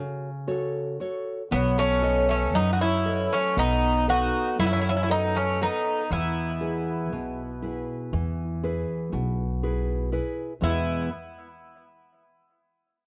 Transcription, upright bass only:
1.52 2.55 B1 medium
2.55 3.26 F#2 loud
3.57 4.28 B1 medium
4.59 5.66 F#2 medium
6.11 7.12 E2 medium
7.12 7.82 B1 loud
8.13 8.83 E2 medium
9.13 10.18 B1 medium
10.62 11.08 E2 medium

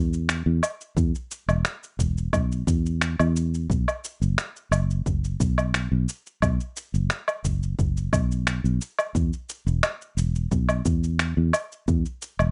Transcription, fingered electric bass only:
0.00 0.42 E2 medium
0.46 0.60 E2 medium
0.96 1.12 E2 medium
1.48 1.62 E1 medium
1.99 2.28 E1 medium
2.33 2.62 B1 medium
2.67 3.15 E2 medium
3.20 3.66 E2 medium
3.70 3.85 B1 medium
4.22 4.35 F#1 medium
4.71 5.00 F#1 medium
5.06 5.35 F#1 medium
5.40 5.87 B1 medium
5.92 6.05 B1 medium
6.42 6.57 B1 loud
6.94 7.08 F#1 medium
7.44 7.73 F#1 medium
7.79 8.08 F#1 medium
8.13 8.60 B1 medium
8.64 8.78 B1 medium
9.15 9.30 E2 medium
9.67 9.80 E1 loud
10.17 10.46 E1 medium
10.51 10.80 B1 medium
10.85 11.33 E2 medium
11.37 11.51 E2 medium
11.88 12.03 E2 loud
12.39 12.51 E1 medium

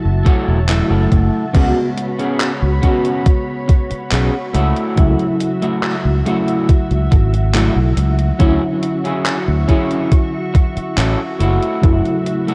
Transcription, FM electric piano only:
0.00 0.68 C#3 medium
0.00 0.68 F#3 medium
0.00 0.69 A3 medium
0.00 0.69 E4 loud
0.00 0.64 F#4 medium
0.68 1.49 C#3 medium
0.68 1.49 F#3 medium
0.68 1.49 A3 medium
0.68 1.50 E4 medium
1.53 2.77 C#3 medium
1.53 2.78 G#3 medium
1.53 2.78 B3 medium
1.53 2.79 F#4 loud
2.81 4.51 C#3 medium
2.81 4.52 G#3 medium
2.81 4.52 B3 medium
2.81 4.53 F#4 medium
4.96 6.20 C#3 medium
4.96 6.21 F#3 medium
4.96 6.21 A3 medium
4.96 6.22 E4 loud
6.24 7.49 C#3 medium
6.24 7.49 F#3 medium
6.24 7.50 A3 medium
6.24 7.50 F#4 medium
7.54 8.35 C#3 medium
7.54 8.35 F#3 medium
7.54 8.35 A3 medium
7.54 8.36 E4 medium
8.39 9.63 D3 medium
8.39 9.63 F#3 medium
8.39 9.64 C#4 medium
8.39 9.65 E4 loud
9.67 11.37 D3 medium
9.67 11.37 F#3 medium
9.67 11.38 C#4 medium
9.67 11.38 E4 medium
11.81 12.54 C#3 medium
11.81 12.54 F#3 medium
11.81 12.54 A3 medium
11.81 12.54 E4 loud

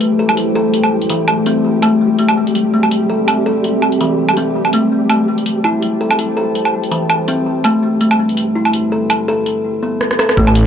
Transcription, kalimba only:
0.19 0.36 A4 medium
0.55 1.08 A4 loud
1.10 1.45 E3 medium
1.46 1.65 C4 loud
1.83 2.17 A3 loud
2.19 2.36 A3 medium
2.74 2.85 A3 medium
3.10 3.27 A4 medium
3.46 3.99 A4 medium
4.01 4.35 E3 medium
4.37 4.55 C4 loud
4.74 5.08 A3 medium
5.10 5.27 A3 medium
5.64 5.82 E4 medium
6.01 6.18 A4 medium
6.37 6.90 A4 medium
6.91 7.26 E3 medium
7.28 7.46 C4 loud
7.65 7.99 A3 medium
8.01 8.18 A3 medium
8.55 8.73 E4 medium
8.92 9.09 A4 medium
9.28 9.81 A4 loud
9.83 9.94 B3 medium
10.19 10.36 A4 loud
10.37 10.55 A3 medium

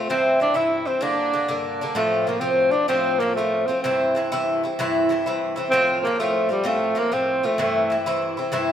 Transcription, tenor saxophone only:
0.10 0.39 C4 loud
0.42 0.57 D4 medium
0.56 0.88 E4 medium
0.87 1.04 C4 medium
1.03 1.66 D4 medium
1.96 2.29 A3 loud
2.28 2.41 A#3 medium
2.40 2.73 C4 medium
2.72 2.88 D4 medium
2.88 3.21 C4 loud
3.19 3.35 A#3 medium
3.35 3.68 A3 medium
3.66 3.82 C4 medium
3.82 4.16 C4 medium
5.71 5.97 C4 loud
6.01 6.21 A#3 loud
6.01 6.05 C4 medium
6.20 6.50 A3 loud
6.51 6.68 G3 medium
6.67 7.00 A3 medium
6.98 7.15 A#3 medium
7.13 7.47 C4 medium
7.45 7.60 A3 medium
7.61 7.93 A3 medium

